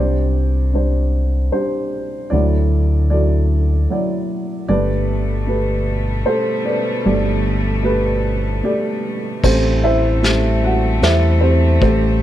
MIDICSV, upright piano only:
0, 0, Header, 1, 2, 480
1, 0, Start_track
1, 0, Tempo, 792602
1, 1404, Time_signature, 3, 2, 24, 8
1, 7403, End_track
2, 0, Start_track
2, 0, Title_t, "Upright piano"
2, 0, Program_c, 0, 0
2, 0, Note_on_c, 0, 36, 45
2, 0, Note_on_c, 0, 48, 47
2, 0, Note_on_c, 0, 55, 58
2, 0, Note_on_c, 0, 62, 53
2, 0, Note_on_c, 0, 67, 55
2, 0, Note_on_c, 0, 72, 61
2, 0, Note_on_c, 0, 74, 74
2, 77, Control_c, 0, 64, 127
2, 296, Note_off_c, 0, 55, 0
2, 299, Note_off_c, 0, 62, 0
2, 300, Note_off_c, 0, 72, 0
2, 445, Note_on_c, 0, 55, 45
2, 448, Note_on_c, 0, 62, 45
2, 455, Note_on_c, 0, 72, 54
2, 778, Note_off_c, 0, 55, 0
2, 780, Note_off_c, 0, 62, 0
2, 783, Note_off_c, 0, 72, 0
2, 903, Note_off_c, 0, 67, 0
2, 921, Note_on_c, 0, 55, 49
2, 922, Note_on_c, 0, 72, 68
2, 925, Note_on_c, 0, 62, 46
2, 932, Note_on_c, 0, 67, 51
2, 954, Note_off_c, 0, 74, 0
2, 1256, Note_off_c, 0, 55, 0
2, 1258, Note_off_c, 0, 62, 0
2, 1384, Note_off_c, 0, 67, 0
2, 1385, Note_off_c, 0, 36, 0
2, 1385, Note_off_c, 0, 48, 0
2, 1393, Note_on_c, 0, 74, 80
2, 1402, Note_on_c, 0, 54, 58
2, 1403, Note_off_c, 0, 74, 0
2, 1406, Note_on_c, 0, 64, 55
2, 1407, Note_on_c, 0, 38, 50
2, 1407, Note_on_c, 0, 50, 50
2, 1408, Note_on_c, 0, 69, 50
2, 1409, Note_on_c, 0, 66, 59
2, 1411, Control_c, 0, 64, 0
2, 1412, Note_on_c, 0, 74, 69
2, 1418, Note_off_c, 0, 72, 0
2, 1517, Control_c, 0, 64, 127
2, 1735, Note_off_c, 0, 54, 0
2, 1737, Note_off_c, 0, 64, 0
2, 1740, Note_off_c, 0, 74, 0
2, 1879, Note_on_c, 0, 74, 74
2, 1881, Note_off_c, 0, 69, 0
2, 1881, Note_on_c, 0, 54, 45
2, 1882, Note_off_c, 0, 66, 0
2, 1887, Note_on_c, 0, 64, 46
2, 1891, Note_on_c, 0, 66, 47
2, 1891, Note_on_c, 0, 69, 49
2, 2212, Note_off_c, 0, 54, 0
2, 2215, Note_off_c, 0, 64, 0
2, 2363, Note_on_c, 0, 54, 56
2, 2364, Note_off_c, 0, 74, 0
2, 2368, Note_on_c, 0, 64, 48
2, 2373, Note_on_c, 0, 74, 62
2, 2577, Note_off_c, 0, 69, 0
2, 2578, Note_off_c, 0, 66, 0
2, 2692, Note_off_c, 0, 54, 0
2, 2694, Note_off_c, 0, 64, 0
2, 2697, Note_off_c, 0, 74, 0
2, 2813, Note_off_c, 0, 38, 0
2, 2813, Note_off_c, 0, 50, 0
2, 2837, Note_on_c, 0, 74, 92
2, 2839, Note_on_c, 0, 57, 55
2, 2841, Note_on_c, 0, 67, 56
2, 2843, Note_on_c, 0, 31, 48
2, 2843, Note_on_c, 0, 43, 53
2, 2845, Control_c, 0, 64, 0
2, 2848, Note_on_c, 0, 71, 71
2, 2851, Note_on_c, 0, 69, 62
2, 2957, Control_c, 0, 64, 127
2, 3169, Note_off_c, 0, 57, 0
2, 3170, Note_off_c, 0, 67, 0
2, 3173, Note_off_c, 0, 71, 0
2, 3313, Note_on_c, 0, 57, 50
2, 3321, Note_on_c, 0, 67, 47
2, 3325, Note_on_c, 0, 71, 64
2, 3645, Note_off_c, 0, 57, 0
2, 3649, Note_off_c, 0, 67, 0
2, 3651, Note_off_c, 0, 71, 0
2, 3775, Note_off_c, 0, 69, 0
2, 3790, Note_on_c, 0, 72, 79
2, 3793, Note_on_c, 0, 57, 55
2, 3796, Note_on_c, 0, 67, 49
2, 3801, Note_on_c, 0, 69, 69
2, 3821, Note_off_c, 0, 74, 0
2, 4029, Note_on_c, 0, 74, 70
2, 4033, Note_off_c, 0, 69, 0
2, 4037, Note_off_c, 0, 72, 0
2, 4039, Note_on_c, 0, 71, 52
2, 4043, Note_on_c, 0, 69, 46
2, 4124, Note_off_c, 0, 57, 0
2, 4125, Note_off_c, 0, 67, 0
2, 4248, Note_off_c, 0, 31, 0
2, 4248, Note_off_c, 0, 43, 0
2, 4269, Note_off_c, 0, 74, 0
2, 4270, Note_on_c, 0, 57, 68
2, 4274, Note_on_c, 0, 31, 47
2, 4274, Note_on_c, 0, 43, 54
2, 4276, Note_on_c, 0, 67, 58
2, 4278, Note_on_c, 0, 74, 79
2, 4601, Note_off_c, 0, 57, 0
2, 4604, Note_off_c, 0, 67, 0
2, 4605, Note_off_c, 0, 74, 0
2, 4743, Note_on_c, 0, 57, 64
2, 4744, Note_off_c, 0, 71, 0
2, 4748, Note_on_c, 0, 67, 60
2, 4753, Note_on_c, 0, 71, 76
2, 5080, Note_off_c, 0, 57, 0
2, 5082, Note_off_c, 0, 67, 0
2, 5085, Note_off_c, 0, 71, 0
2, 5213, Note_off_c, 0, 69, 0
2, 5229, Note_on_c, 0, 57, 63
2, 5232, Note_on_c, 0, 67, 62
2, 5237, Note_on_c, 0, 74, 73
2, 5566, Note_off_c, 0, 57, 0
2, 5568, Note_off_c, 0, 67, 0
2, 5570, Note_off_c, 0, 74, 0
2, 5693, Note_off_c, 0, 31, 0
2, 5693, Note_off_c, 0, 43, 0
2, 5715, Note_on_c, 0, 57, 68
2, 5716, Note_on_c, 0, 45, 56
2, 5717, Note_on_c, 0, 33, 53
2, 5717, Note_on_c, 0, 72, 84
2, 5718, Note_on_c, 0, 67, 61
2, 5720, Note_on_c, 0, 60, 59
2, 5721, Note_on_c, 0, 64, 53
2, 5722, Control_c, 0, 64, 0
2, 5831, Control_c, 0, 64, 127
2, 5940, Note_off_c, 0, 72, 0
2, 5941, Note_off_c, 0, 60, 0
2, 5942, Note_off_c, 0, 64, 0
2, 5957, Note_on_c, 0, 76, 82
2, 5963, Note_on_c, 0, 64, 70
2, 5963, Note_on_c, 0, 72, 63
2, 6049, Note_off_c, 0, 57, 0
2, 6050, Note_off_c, 0, 67, 0
2, 6189, Note_on_c, 0, 57, 60
2, 6195, Note_on_c, 0, 67, 49
2, 6200, Note_on_c, 0, 69, 58
2, 6416, Note_off_c, 0, 64, 0
2, 6416, Note_off_c, 0, 72, 0
2, 6442, Note_on_c, 0, 78, 76
2, 6445, Note_on_c, 0, 66, 64
2, 6451, Note_off_c, 0, 76, 0
2, 6525, Note_off_c, 0, 57, 0
2, 6528, Note_off_c, 0, 67, 0
2, 6531, Note_off_c, 0, 69, 0
2, 6663, Note_off_c, 0, 66, 0
2, 6671, Note_on_c, 0, 57, 56
2, 6678, Note_on_c, 0, 67, 57
2, 6680, Note_on_c, 0, 72, 62
2, 6682, Note_on_c, 0, 76, 81
2, 6683, Note_on_c, 0, 64, 68
2, 6685, Note_off_c, 0, 78, 0
2, 6900, Note_off_c, 0, 72, 0
2, 6902, Note_off_c, 0, 64, 0
2, 6904, Note_off_c, 0, 67, 0
2, 6909, Note_on_c, 0, 72, 65
2, 6913, Note_on_c, 0, 67, 47
2, 6915, Note_on_c, 0, 60, 51
2, 6925, Note_off_c, 0, 76, 0
2, 7005, Note_off_c, 0, 57, 0
2, 7131, Note_off_c, 0, 33, 0
2, 7131, Note_off_c, 0, 45, 0
2, 7147, Note_off_c, 0, 67, 0
2, 7152, Note_off_c, 0, 72, 0
2, 7152, Note_on_c, 0, 57, 66
2, 7156, Note_on_c, 0, 67, 68
2, 7157, Note_on_c, 0, 33, 50
2, 7157, Note_on_c, 0, 45, 57
2, 7161, Note_on_c, 0, 72, 74
2, 7403, Note_off_c, 0, 33, 0
2, 7403, Note_off_c, 0, 45, 0
2, 7403, Note_off_c, 0, 57, 0
2, 7403, Note_off_c, 0, 60, 0
2, 7403, Note_off_c, 0, 67, 0
2, 7403, Note_off_c, 0, 72, 0
2, 7403, End_track
0, 0, End_of_file